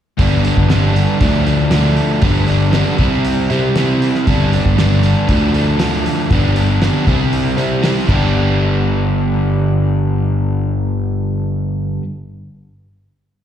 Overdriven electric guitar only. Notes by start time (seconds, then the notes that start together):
0.17 G2 D3 G3 B3 D4
0.43 G3 B3 D4
0.68 G2 D3 G3 B3 D4
0.94 G3 B3 D4
1.20 D3 F3 A3 D4
1.46 F3 A3 D4
1.71 D3 F3 A3 D4
2.21 G2 D3 G3 B3 D4
2.47 G3 B3 D4
2.72 G2 D3 G3 B3 D4
2.98 C3 G3 C4 E4
3.49 G3 C4 E4
3.75 C3 G3 C4 E4
4.27 G2 D3 G3 B3 D4
4.52 G3 B3 D4
4.77 G2 D3 G3 B3 D4
5.03 G3 B3 D4
5.28 D3 F3 A3 D4
5.54 F3 A3 D4
5.79 D3 F3 A3 D4
6.31 G2 D3 G3 B3 D4
6.57 G3 B3 D4
6.81 G2 D3 G3 B3 D4
7.07 C3 G3 C4 E4
7.57 G3 C4 E4
7.82 C3 G3 C4 E4
8.07 G2 D3 G3 B3 D4
8.11 G4